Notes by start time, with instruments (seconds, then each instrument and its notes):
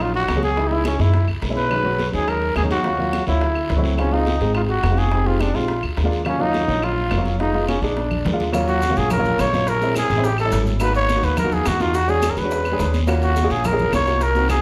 Already playing: upright bass A#1, grand piano F#3 A#3 C#4 D#4
0.00 trumpet F4, high bongo, high conga, long guiro, claves
0.15 trumpet F#4, high bongo, high conga
0.28 upright bass C#2, high bongo, low bongo, high conga, short guiro, claves
0.35 grand piano F#3 A#3 C#4 G#4
0.43 trumpet G#4, high bongo, high conga, short guiro
0.56 grand piano G#3 B3 D#4 E4, high bongo, high conga, long guiro
0.67 grand piano G#3 B3, trumpet D#4, high conga
0.72 grand piano D#4 E4, trumpet E4
0.85 trumpet C#4, high bongo, high conga, short guiro, claves
0.99 upright bass F#2, grand piano G#3 B3 D#4 E4, trumpet E4, high bongo, short guiro
1.14 high bongo, high conga, long guiro
1.28 upright bass C#2, high bongo, high conga, claves
1.42 upright bass B1, high bongo, low bongo, high conga, short guiro
1.49 grand piano G#3 A#3 C#4 E4
1.57 trumpet B4, high bongo, high conga, short guiro
1.70 grand piano F#3 G#3 C#4 D#4, high bongo, long guiro, claves
1.84 grand piano F#3 G#3 C#4 F#4, high conga
1.99 high bongo, high conga, short guiro
2.12 upright bass D#2, grand piano F#3 G#3 C#4 D#4, trumpet G#4, high bongo, high conga, short guiro
2.28 trumpet A#4, high bongo, high conga, long guiro, claves
2.42 high bongo, high conga
2.56 upright bass D#2, trumpet G#4, high bongo, low bongo, high conga, short guiro, claves
2.63 grand piano F#3 G#3 C#4 D#4
2.71 trumpet F#4, high bongo, high conga, short guiro
2.84 grand piano F#3 A#3 C#4 F4, high bongo, high conga, long guiro
2.98 grand piano F#3 A#3 C#4 F4, high conga
3.13 high bongo, high conga, short guiro, claves
3.27 upright bass D2, grand piano F#3 A#3 C#4 F4, trumpet E4, high bongo, short guiro
3.41 high bongo, high conga, long guiro
3.55 high bongo, high conga, claves
3.70 upright bass C#2, high bongo, low bongo, high conga, short guiro
3.77 grand piano F#3 A3 C4 E4
3.84 high bongo, short guiro
3.97 grand piano G#3 C4 D#4 F4, trumpet C#4, high bongo, high conga, long guiro, claves
4.12 grand piano G#3 C4 D#4 F4, trumpet D#4, high conga
4.26 high bongo, high conga, short guiro
4.40 upright bass G#1, grand piano G#3 C4 D#4 G#4, high bongo, high conga, short guiro
4.54 trumpet F4, high bongo, high conga, long guiro, claves
4.69 trumpet F#4, high bongo, high conga
4.83 upright bass F1, high bongo, low bongo, high conga, short guiro, claves
4.90 grand piano G#3 C4 D#4 F4
4.97 trumpet G#4, high bongo, high conga, short guiro
5.12 grand piano G#3 C4 D#4 G4, high bongo, high conga, long guiro
5.25 grand piano G#3 C4 D#4 G4, trumpet F4, high conga
5.40 trumpet D4, high bongo, high conga, short guiro, claves
5.54 upright bass A#1, grand piano G#3 C4 D#4 G4, trumpet F4, high bongo, short guiro
5.68 high bongo, high conga, long guiro
5.83 upright bass D2, high bongo, high conga, claves
5.97 upright bass D#2, high bongo, low bongo, high conga, short guiro
6.04 grand piano G#3 A#3 D4 F4
6.11 high bongo, short guiro
6.24 grand piano F#3 A#3 C#4 F4, trumpet C#4, high bongo, high conga, long guiro, claves
6.39 grand piano F#3 A#3 C#4 F4, trumpet D#4, high conga
6.54 high bongo, high conga, short guiro
6.67 upright bass A#1, grand piano F#3 A#3 C#4 F4, high bongo, high conga, short guiro
6.82 trumpet F4, high bongo, high conga, long guiro, claves
6.98 high bongo, high conga
7.11 upright bass F1, high bongo, low bongo, high conga, short guiro, claves
7.17 grand piano F#3 A#3 C#4 F4
7.26 high bongo, high conga, short guiro
7.39 grand piano G#3 B3 D#4 F4, trumpet D#4, high bongo, high conga, long guiro
7.53 grand piano G#3 B3 D#4 F4, high conga
7.68 trumpet C#4, high bongo, high conga, short guiro, claves
7.82 upright bass A#1, grand piano G#3 B3 D#4 G#4, trumpet D4, high bongo, short guiro
7.97 high bongo, high conga, long guiro
8.11 high bongo, low conga, claves
8.25 upright bass D#2, high bongo, low bongo, low conga, short guiro
8.32 grand piano G#3 A#3 D4 F4
8.40 high bongo, low conga, short guiro
8.53 grand piano F#3 A#3 C#4 F4, high bongo, high conga, long guiro, claves, maracas
8.68 trumpet F#4, high conga, maracas
8.82 high bongo, high conga, short guiro, maracas
8.89 grand piano F#3 A#3 C#4 F4
8.96 upright bass A#1, trumpet G#4, high bongo, high conga, short guiro, maracas
9.10 trumpet A#4, high bongo, high conga, low conga, long guiro, claves, maracas
9.18 grand piano F#3 A#3 C#4 F4
9.25 high bongo, high conga, low conga, maracas
9.39 upright bass A#1, trumpet C#5, high bongo, low bongo, high conga, short guiro, claves, maracas
9.53 grand piano F#3 A#3 C#4 F4, high bongo, high conga, short guiro, maracas
9.67 trumpet A#4, high bongo, high conga, long guiro, maracas
9.82 grand piano G#3 C4 C#4 E4, high conga, maracas
9.95 trumpet G#4, high bongo, high conga, short guiro, claves, maracas
10.10 upright bass A1, high bongo, short guiro, maracas
10.16 grand piano G#3 C4 C#4 E4
10.24 trumpet G4, high bongo, high conga, long guiro, maracas
10.38 trumpet A4, high bongo, high conga, claves, maracas
10.44 grand piano G3 B3 C#4 E4
10.52 upright bass G#1, high bongo, low bongo, high conga, short guiro, maracas
10.66 high bongo, high conga, short guiro, maracas
10.80 grand piano A#3 B3 D#4 F#4, trumpet B4, high bongo, high conga, long guiro, claves, maracas
10.95 trumpet C#5, high conga, maracas
11.09 high bongo, high conga, short guiro, maracas
11.15 grand piano A#3 B3 D#4 F#4
11.23 upright bass D#2, trumpet B4, short guiro, maracas
11.37 trumpet A#4, high bongo, high conga, low conga, long guiro, claves, maracas
11.44 grand piano A#3 B3 D#4 F#4
11.52 trumpet G#4, high bongo, high conga, low conga, maracas
11.66 upright bass E2, trumpet F#4, high bongo, low bongo, high conga, short guiro, claves, maracas
11.80 grand piano A#3 B3 D#4 F#4, trumpet F4, high bongo, high conga, short guiro, maracas
11.94 trumpet F#4, high bongo, high conga, long guiro, maracas
12.07 grand piano G#3 C#4 D4 F#4, trumpet G#4, high conga, maracas
12.22 high bongo, high conga, short guiro, claves, maracas
12.30 trumpet A#4
12.37 upright bass E2, trumpet B4, high bongo, short guiro, maracas
12.43 grand piano G#3 C#4 D4 F#4
12.50 high bongo, high conga, long guiro, maracas
12.65 high bongo, high conga, claves, maracas
12.72 grand piano G#3 C#4 D4 G#4
12.79 upright bass D#2, high bongo, low bongo, high conga, short guiro, maracas
12.94 high bongo, high conga, short guiro, maracas
13.07 grand piano A#3 C#4 F4 F#4, high bongo, long guiro, claves, maracas
13.22 trumpet F#4, high conga, maracas
13.36 high bongo, high conga, short guiro, maracas
13.43 grand piano A#3 C#4 F4 G#4
13.50 upright bass A#1, trumpet G#4, high bongo, high conga, short guiro, maracas
13.64 trumpet A#4, high bongo, high conga, low conga, long guiro, claves, maracas
13.72 grand piano A#3 C#4 F4 G#4
13.79 high bongo, high conga, low conga, maracas
13.92 upright bass C2, trumpet C#5, high bongo, low bongo, high conga, short guiro, claves, maracas
14.07 grand piano A#3 C#4 F4 F#4, high bongo, high conga, short guiro, maracas
14.21 trumpet A#4, high bongo, high conga, long guiro, maracas
14.35 grand piano A#3 C4 D#4 F#4, high conga, maracas
14.49 trumpet G#4, high bongo, high conga, short guiro, claves, maracas